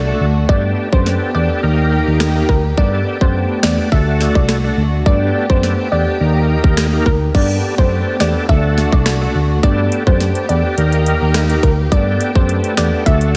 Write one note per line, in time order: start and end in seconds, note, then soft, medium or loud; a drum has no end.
0.00 0.11 C2 medium
0.00 1.60 A3 medium
0.00 0.48 D4 medium
0.00 0.48 F#4 medium
0.07 0.25 A3 medium
0.07 0.26 D4 medium
0.07 0.26 F#4 medium
0.07 0.26 A4 medium
0.20 0.43 D2 medium
0.49 0.71 G2 medium
0.49 0.89 B3 medium
0.49 1.62 B3 medium
0.49 0.89 D4 medium
0.49 3.88 G4 medium
0.49 0.89 G4 medium
0.49 0.89 A4 loud
0.49 0.61 D5 loud
0.49 kick loud
0.92 1.15 F#2 medium
0.92 1.31 B3 medium
0.92 1.31 D4 medium
0.92 1.31 G4 medium
0.92 1.32 A4 medium
0.92 1.03 C5 medium
0.92 kick loud
1.06 snare medium
1.34 1.47 E2 medium
1.34 1.61 B3 medium
1.34 1.61 D4 medium
1.34 1.61 G4 medium
1.34 1.61 A4 medium
1.34 1.46 D5 medium
1.63 1.98 D#2 loud
1.63 2.29 A#3 medium
1.63 2.76 A#3 medium
1.63 2.29 D#4 medium
1.63 2.76 D#4 medium
1.63 2.29 G4 medium
1.63 2.30 A#4 loud
2.07 2.40 D#2 medium
2.20 finger snap medium
2.20 cross-stick loud
2.20 snare loud
2.35 2.54 A#3 medium
2.35 2.54 D#4 medium
2.35 2.54 G4 medium
2.35 2.54 A#4 medium
2.49 2.71 D2 medium
2.49 2.61 A#4 medium
2.49 kick medium
2.77 3.00 G2 loud
2.77 6.17 A3 medium
2.77 3.17 B3 medium
2.77 3.91 B3 medium
2.77 3.18 D4 medium
2.77 3.18 G4 medium
2.77 3.18 A4 loud
2.77 2.89 D5 loud
2.77 kick loud
3.21 3.44 F#2 medium
3.21 3.60 B3 medium
3.21 3.60 D4 medium
3.21 3.60 G4 medium
3.21 3.60 A4 medium
3.21 3.32 C5 medium
3.21 kick medium
3.63 3.75 E2 medium
3.63 3.90 B3 medium
3.63 3.90 D4 medium
3.63 3.90 G4 medium
3.63 3.90 A4 medium
3.63 3.75 D5 medium
3.63 finger snap medium
3.63 snare loud
3.92 4.26 D2 loud
3.92 4.58 A3 loud
3.92 4.58 D4 medium
3.92 5.05 D4 medium
3.92 5.05 F#4 medium
3.92 4.58 F#4 medium
3.92 4.58 A4 loud
3.92 4.04 E5 medium
3.92 kick medium
4.21 snare medium
4.35 4.68 C2 medium
4.35 4.46 D5 medium
4.35 kick loud
4.49 finger snap loud
4.49 cross-stick loud
4.49 snare loud
4.64 4.83 A3 medium
4.64 4.83 D4 medium
4.64 4.83 F#4 medium
4.64 4.83 A4 medium
4.78 5.00 D2 medium
5.06 5.29 G2 medium
5.06 5.46 B3 medium
5.06 6.19 B3 medium
5.06 5.46 D4 medium
5.06 7.32 G4 medium
5.06 5.46 G4 medium
5.06 5.46 A4 loud
5.06 5.18 D5 loud
5.06 kick loud
5.50 5.72 F#2 medium
5.50 5.88 B3 medium
5.50 5.89 D4 medium
5.50 5.89 G4 medium
5.50 5.89 A4 medium
5.50 5.60 C5 medium
5.50 kick medium
5.63 snare medium
5.92 6.04 E2 medium
5.92 6.18 B3 medium
5.92 6.18 D4 medium
5.92 6.18 G4 medium
5.92 6.18 A4 medium
5.92 6.04 D5 medium
6.20 6.55 D#2 loud
6.20 6.86 A#3 medium
6.20 7.34 A#3 medium
6.20 6.87 D#4 medium
6.20 7.34 D#4 medium
6.20 6.87 G4 medium
6.20 6.87 A#4 loud
6.64 6.97 D#2 medium
6.64 kick loud
6.77 finger snap medium
6.77 cross-stick loud
6.77 snare loud
6.92 7.11 A#3 medium
6.92 7.11 D#4 medium
6.92 7.11 G4 medium
6.92 7.11 A#4 medium
7.06 7.29 D2 medium
7.06 7.18 A#4 medium
7.06 kick medium
7.34 7.57 G2 loud
7.34 8.48 A3 medium
7.34 7.75 B3 medium
7.34 8.48 B3 medium
7.34 7.75 D4 medium
7.34 8.48 G4 medium
7.34 7.75 G4 medium
7.34 7.75 A4 loud
7.34 7.46 D5 loud
7.34 kick loud
7.34 crash medium
7.78 8.01 F#2 medium
7.78 8.17 B3 medium
7.78 8.17 D4 medium
7.78 8.17 G4 medium
7.78 8.17 A4 medium
7.78 7.89 C5 medium
7.78 kick loud
8.20 8.32 E2 medium
8.20 8.47 B3 medium
8.20 8.47 D4 medium
8.20 8.47 G4 medium
8.20 8.47 A4 medium
8.20 8.32 D5 medium
8.20 finger snap medium
8.20 snare loud
8.49 8.83 D2 loud
8.49 9.15 A3 medium
8.49 10.75 A3 medium
8.49 9.62 D4 medium
8.49 9.15 D4 medium
8.49 9.62 F#4 medium
8.49 9.15 F#4 medium
8.49 9.15 A4 loud
8.49 8.61 E5 medium
8.49 kick medium
8.78 snare medium
8.92 9.26 C2 medium
8.92 9.03 D5 medium
8.92 kick loud
9.06 finger snap loud
9.06 cross-stick loud
9.06 snare loud
9.21 9.40 A3 medium
9.21 9.40 D4 medium
9.21 9.40 F#4 medium
9.21 9.40 A4 medium
9.35 9.57 D2 medium
9.63 9.86 G2 medium
9.63 10.03 B3 medium
9.63 10.76 B3 medium
9.63 10.03 D4 medium
9.63 13.03 G4 medium
9.63 10.03 G4 medium
9.63 10.03 A4 loud
9.63 9.75 D5 loud
9.63 kick loud
9.63 closed hi-hat medium
9.92 closed hi-hat medium
10.07 10.29 F#2 medium
10.07 10.46 B3 medium
10.07 10.46 D4 medium
10.07 10.46 G4 medium
10.07 10.46 A4 medium
10.07 10.17 C5 medium
10.07 kick loud
10.20 snare medium
10.20 closed hi-hat medium
10.35 closed hi-hat medium
10.49 10.61 E2 medium
10.49 10.75 B3 medium
10.49 10.75 D4 medium
10.49 10.75 G4 medium
10.49 10.76 A4 medium
10.49 10.61 D5 medium
10.49 closed hi-hat medium
10.77 11.12 D#2 loud
10.77 11.44 A#3 loud
10.77 11.91 A#3 medium
10.77 11.44 D#4 medium
10.77 11.91 D#4 medium
10.77 11.44 G4 medium
10.77 11.44 A#4 loud
10.77 closed hi-hat medium
10.92 closed hi-hat soft
11.06 closed hi-hat medium
11.21 11.54 D#2 medium
11.34 finger snap medium
11.34 cross-stick loud
11.34 snare loud
11.34 closed hi-hat medium
11.49 11.68 A#3 medium
11.49 11.68 D#4 medium
11.49 11.68 G4 medium
11.49 11.69 A#4 medium
11.49 closed hi-hat soft
11.63 11.86 D2 medium
11.63 11.75 A#4 medium
11.63 kick medium
11.63 closed hi-hat medium
11.91 12.14 G2 loud
11.91 13.37 A3 medium
11.91 12.32 B3 medium
11.91 13.05 B3 medium
11.91 12.32 D4 medium
11.91 12.32 G4 medium
11.91 12.32 A4 loud
11.91 12.04 D5 loud
11.91 kick loud
11.91 closed hi-hat medium
12.21 closed hi-hat medium
12.35 12.58 F#2 medium
12.35 12.74 B3 medium
12.35 12.74 D4 medium
12.35 12.74 G4 medium
12.35 12.74 A4 medium
12.35 12.46 C5 medium
12.35 kick loud
12.49 closed hi-hat medium
12.64 closed hi-hat medium
12.77 12.89 E2 medium
12.77 13.04 B3 medium
12.77 13.04 D4 medium
12.77 13.04 G4 medium
12.77 13.04 A4 medium
12.77 12.89 D5 medium
12.77 finger snap medium
12.77 snare loud
12.77 closed hi-hat medium
13.06 13.37 D2 loud
13.06 13.37 A3 loud
13.06 13.37 D4 medium
13.06 13.37 F#4 medium
13.06 13.37 A4 loud
13.06 13.18 E5 medium
13.06 kick medium
13.06 closed hi-hat medium
13.21 closed hi-hat soft